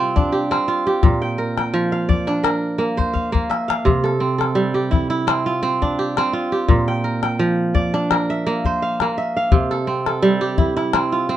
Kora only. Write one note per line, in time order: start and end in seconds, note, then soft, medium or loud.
0.00 0.55 C3 medium
0.00 1.09 G3 medium
0.00 0.51 C4 medium
0.00 0.68 F4 medium
0.00 0.32 G4 medium
0.16 1.84 D4 medium
0.32 0.86 G4 medium
0.51 2.31 C4 medium
0.68 2.19 F4 medium
0.87 2.28 G4 medium
1.03 3.37 A#2 medium
1.22 1.57 G5 medium
1.38 2.43 A#4 medium
1.58 2.51 G5 medium
1.74 3.91 F3 medium
1.92 2.92 F5 medium
2.09 3.19 D5 medium
2.27 3.95 D4 medium
2.43 3.71 A#4 medium
2.78 3.32 A#3 medium
2.97 4.16 C5 medium
3.13 3.68 F5 medium
3.32 4.10 A#3 medium
3.50 4.53 E5 medium
3.68 4.68 F5 medium
3.85 6.19 C3 medium
4.04 4.38 A4 medium
4.20 5.27 C4 medium
4.38 5.70 A4 medium
4.55 6.74 G3 medium
4.74 5.98 G4 medium
4.91 5.10 E4 medium
5.10 5.52 E4 medium
5.27 5.62 C4 medium
5.46 6.33 F4 medium
5.63 6.17 C4 medium
5.82 7.50 D4 medium
5.99 6.52 G4 medium
6.18 7.98 C4 medium
6.33 7.85 F4 medium
6.52 7.93 G4 medium
6.68 9.02 A#2 medium
6.88 7.23 G5 medium
7.04 8.11 A#4 medium
7.23 8.16 G5 medium
7.39 9.57 F3 medium
7.75 8.85 D5 medium
7.94 9.62 D4 medium
8.11 9.39 A#4 medium
8.30 8.88 E5 medium
8.47 9.01 A#3 medium
8.66 9.84 C5 medium
8.82 9.36 F5 medium
9.02 9.77 A#3 medium
9.18 10.21 E5 medium
9.37 10.36 F5 medium
9.52 11.37 C3 medium
9.71 10.06 A4 medium
9.87 10.93 C4 medium
10.07 11.37 A4 medium
10.22 11.37 G3 medium
10.41 11.37 G4 medium
10.58 10.76 E4 medium
10.77 11.18 E4 medium
10.94 11.29 C4 medium
11.12 11.37 F4 medium
11.29 11.37 C4 medium